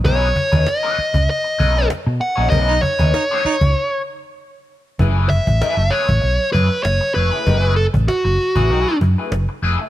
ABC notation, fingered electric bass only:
X:1
M:4/4
L:1/16
Q:1/4=97
K:F#dor
V:1 name="Fingered electric bass" clef=bass
B,,,2 z D,, z3 C,, z2 B,,,2 z B,, z ^A,,, | B,,,2 z D,, z3 C,, z8 | F,,,3 A,,, z F,,, z A,,, B,,, z F,, z F,,, z ^E,,, z | F,,,3 A,,, z F,,, z A,,, B,,, z F,, z F,,, z ^E,,, z |]